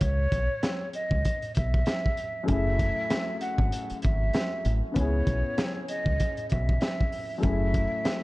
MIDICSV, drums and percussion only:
0, 0, Header, 1, 2, 480
1, 0, Start_track
1, 0, Key_signature, 4, "minor"
1, 0, Tempo, 618557
1, 8, Time_signature, 4, 2, 24, 8
1, 6387, End_track
2, 0, Start_track
2, 0, Title_t, "Drums"
2, 5, Note_on_c, 9, 42, 85
2, 9, Note_on_c, 9, 36, 97
2, 83, Note_off_c, 9, 42, 0
2, 86, Note_off_c, 9, 36, 0
2, 248, Note_on_c, 9, 36, 94
2, 249, Note_on_c, 9, 42, 77
2, 326, Note_off_c, 9, 36, 0
2, 327, Note_off_c, 9, 42, 0
2, 487, Note_on_c, 9, 42, 88
2, 489, Note_on_c, 9, 38, 106
2, 492, Note_on_c, 9, 40, 87
2, 565, Note_off_c, 9, 42, 0
2, 567, Note_off_c, 9, 38, 0
2, 570, Note_off_c, 9, 40, 0
2, 725, Note_on_c, 9, 42, 81
2, 803, Note_off_c, 9, 42, 0
2, 860, Note_on_c, 9, 36, 98
2, 938, Note_off_c, 9, 36, 0
2, 968, Note_on_c, 9, 42, 105
2, 974, Note_on_c, 9, 36, 106
2, 1045, Note_off_c, 9, 42, 0
2, 1051, Note_off_c, 9, 36, 0
2, 1104, Note_on_c, 9, 42, 52
2, 1182, Note_off_c, 9, 42, 0
2, 1200, Note_on_c, 9, 42, 72
2, 1219, Note_on_c, 9, 36, 94
2, 1278, Note_off_c, 9, 42, 0
2, 1297, Note_off_c, 9, 36, 0
2, 1351, Note_on_c, 9, 36, 95
2, 1428, Note_off_c, 9, 36, 0
2, 1442, Note_on_c, 9, 42, 73
2, 1450, Note_on_c, 9, 38, 103
2, 1453, Note_on_c, 9, 40, 85
2, 1520, Note_off_c, 9, 42, 0
2, 1528, Note_off_c, 9, 38, 0
2, 1531, Note_off_c, 9, 40, 0
2, 1596, Note_on_c, 9, 36, 85
2, 1674, Note_off_c, 9, 36, 0
2, 1686, Note_on_c, 9, 42, 78
2, 1764, Note_off_c, 9, 42, 0
2, 1924, Note_on_c, 9, 42, 84
2, 1929, Note_on_c, 9, 36, 99
2, 2001, Note_off_c, 9, 42, 0
2, 2006, Note_off_c, 9, 36, 0
2, 2168, Note_on_c, 9, 36, 91
2, 2168, Note_on_c, 9, 42, 82
2, 2246, Note_off_c, 9, 36, 0
2, 2246, Note_off_c, 9, 42, 0
2, 2407, Note_on_c, 9, 42, 92
2, 2409, Note_on_c, 9, 38, 109
2, 2412, Note_on_c, 9, 40, 87
2, 2485, Note_off_c, 9, 42, 0
2, 2487, Note_off_c, 9, 38, 0
2, 2490, Note_off_c, 9, 40, 0
2, 2645, Note_on_c, 9, 42, 82
2, 2722, Note_off_c, 9, 42, 0
2, 2781, Note_on_c, 9, 36, 97
2, 2859, Note_off_c, 9, 36, 0
2, 2889, Note_on_c, 9, 42, 107
2, 2967, Note_off_c, 9, 42, 0
2, 3024, Note_on_c, 9, 42, 50
2, 3102, Note_off_c, 9, 42, 0
2, 3121, Note_on_c, 9, 42, 72
2, 3140, Note_on_c, 9, 36, 94
2, 3198, Note_off_c, 9, 42, 0
2, 3217, Note_off_c, 9, 36, 0
2, 3364, Note_on_c, 9, 42, 72
2, 3372, Note_on_c, 9, 38, 105
2, 3375, Note_on_c, 9, 40, 81
2, 3441, Note_off_c, 9, 42, 0
2, 3450, Note_off_c, 9, 38, 0
2, 3453, Note_off_c, 9, 40, 0
2, 3607, Note_on_c, 9, 42, 79
2, 3685, Note_off_c, 9, 42, 0
2, 3846, Note_on_c, 9, 42, 86
2, 3850, Note_on_c, 9, 36, 96
2, 3924, Note_off_c, 9, 42, 0
2, 3927, Note_off_c, 9, 36, 0
2, 4089, Note_on_c, 9, 36, 95
2, 4090, Note_on_c, 9, 42, 77
2, 4166, Note_off_c, 9, 36, 0
2, 4167, Note_off_c, 9, 42, 0
2, 4328, Note_on_c, 9, 42, 89
2, 4330, Note_on_c, 9, 38, 107
2, 4333, Note_on_c, 9, 40, 90
2, 4406, Note_off_c, 9, 42, 0
2, 4408, Note_off_c, 9, 38, 0
2, 4411, Note_off_c, 9, 40, 0
2, 4566, Note_on_c, 9, 42, 81
2, 4644, Note_off_c, 9, 42, 0
2, 4701, Note_on_c, 9, 36, 95
2, 4779, Note_off_c, 9, 36, 0
2, 4809, Note_on_c, 9, 42, 104
2, 4814, Note_on_c, 9, 36, 106
2, 4886, Note_off_c, 9, 42, 0
2, 4892, Note_off_c, 9, 36, 0
2, 4944, Note_on_c, 9, 42, 50
2, 5022, Note_off_c, 9, 42, 0
2, 5041, Note_on_c, 9, 42, 75
2, 5060, Note_on_c, 9, 36, 97
2, 5118, Note_off_c, 9, 42, 0
2, 5137, Note_off_c, 9, 36, 0
2, 5191, Note_on_c, 9, 36, 92
2, 5269, Note_off_c, 9, 36, 0
2, 5283, Note_on_c, 9, 42, 73
2, 5291, Note_on_c, 9, 38, 107
2, 5294, Note_on_c, 9, 40, 84
2, 5361, Note_off_c, 9, 42, 0
2, 5369, Note_off_c, 9, 38, 0
2, 5372, Note_off_c, 9, 40, 0
2, 5436, Note_on_c, 9, 36, 88
2, 5514, Note_off_c, 9, 36, 0
2, 5527, Note_on_c, 9, 46, 58
2, 5605, Note_off_c, 9, 46, 0
2, 5764, Note_on_c, 9, 42, 83
2, 5769, Note_on_c, 9, 36, 94
2, 5842, Note_off_c, 9, 42, 0
2, 5846, Note_off_c, 9, 36, 0
2, 6008, Note_on_c, 9, 36, 95
2, 6008, Note_on_c, 9, 42, 80
2, 6085, Note_off_c, 9, 36, 0
2, 6086, Note_off_c, 9, 42, 0
2, 6247, Note_on_c, 9, 42, 88
2, 6249, Note_on_c, 9, 38, 110
2, 6252, Note_on_c, 9, 40, 86
2, 6325, Note_off_c, 9, 42, 0
2, 6327, Note_off_c, 9, 38, 0
2, 6330, Note_off_c, 9, 40, 0
2, 6387, End_track
0, 0, End_of_file